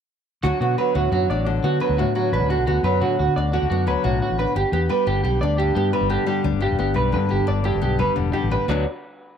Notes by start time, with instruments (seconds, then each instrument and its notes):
0.43 fingered electric bass D2, nylon-string guitar D3 F#3 D4 F#4, clean electric guitar F#4, muted nylon-string guitar stroke
0.60 fingered electric bass B2, nylon-string guitar B3, clean electric guitar F#4
0.78 nylon-string guitar F#3, clean electric guitar B4
0.95 fingered electric bass D2, nylon-string guitar A2, clean electric guitar F#4
1.11 fingered electric bass F#2, nylon-string guitar F#3, clean electric guitar F#4
1.28 fingered electric bass A1, nylon-string guitar D4, clean electric guitar D5
1.46 nylon-string guitar D3, muted clean electric guitar stroke
1.63 fingered electric bass D3, nylon-string guitar B3, clean electric guitar F#4
1.80 nylon-string guitar F#3, clean electric guitar B4
1.89 fingered electric bass D2
1.98 nylon-string guitar A2, clean electric guitar F#4
2.15 nylon-string guitar F#3, clean electric guitar F#4
2.32 fingered electric bass A1, nylon-string guitar D4, clean electric guitar B4
2.41 fingered electric bass D2
2.50 nylon-string guitar D3, clean electric guitar F#4
2.58 fingered electric bass B1
2.66 fingered electric bass D2, nylon-string guitar B3, clean electric guitar F#4
2.83 fingered electric bass F#2, nylon-string guitar F#3, clean electric guitar B4
3.01 nylon-string guitar A2, fingered electric bass D3, clean electric guitar F#4
3.19 fingered electric bass D2, clean electric guitar F#4
3.28 fingered electric bass D3
3.36 fingered electric bass D2, nylon-string guitar D4, clean electric guitar D5
3.53 nylon-string guitar D3, clean electric guitar F#4
3.62 fingered electric bass D2
3.70 fingered electric bass F#2, nylon-string guitar B3, clean electric guitar F#4
3.87 fingered electric bass D2, nylon-string guitar F#3, clean electric guitar B4
4.04 fingered electric bass B1, nylon-string guitar A2, clean electric guitar F#4
4.22 clean electric guitar F#4
4.30 fingered electric bass A1
4.39 nylon-string guitar D4, clean electric guitar B4
4.55 fingered electric bass G1, clean electric guitar G4, muted nylon-string guitar stroke
4.72 fingered electric bass E2, nylon-string guitar B3, clean electric guitar G4
4.89 nylon-string guitar G3, clean electric guitar B4
5.06 fingered electric bass G1, nylon-string guitar D3, clean electric guitar G4
5.24 fingered electric bass B1, nylon-string guitar G3, clean electric guitar G4
5.41 fingered electric bass D2, nylon-string guitar D4, clean electric guitar D5
5.58 nylon-string guitar G2, clean electric guitar G4
5.75 fingered electric bass G2, nylon-string guitar B3, clean electric guitar G4
5.93 nylon-string guitar G3, clean electric guitar B4
6.01 fingered electric bass G1
6.10 nylon-string guitar D3, clean electric guitar G4
6.26 nylon-string guitar G3, clean electric guitar G4
6.44 fingered electric bass D2, nylon-string guitar D4
6.52 fingered electric bass G1
6.61 nylon-string guitar G2, clean electric guitar G4
6.70 fingered electric bass E1
6.78 fingered electric bass G1, nylon-string guitar B3, clean electric guitar G4
6.94 fingered electric bass B1, nylon-string guitar G3, clean electric guitar B4
7.12 fingered electric bass G2, nylon-string guitar D3, clean electric guitar B4
7.29 fingered electric bass G1, nylon-string guitar G3, clean electric guitar G4
7.40 fingered electric bass G2
7.47 fingered electric bass G1, nylon-string guitar D4, clean electric guitar D5
7.64 nylon-string guitar G2, clean electric guitar G4
7.75 fingered electric bass G1
7.81 fingered electric bass B1, nylon-string guitar B3, clean electric guitar G4
7.99 fingered electric bass G1, nylon-string guitar G3, clean electric guitar B4
8.16 fingered electric bass E1, nylon-string guitar D3
8.33 nylon-string guitar G3, clean electric guitar G4
8.42 fingered electric bass A1
8.51 nylon-string guitar D4, clean electric guitar B4
8.68 fingered electric bass D2, nylon-string guitar D3 F#3 B3 D4, clean electric guitar F#4 B4 D5, muted nylon-string guitar stroke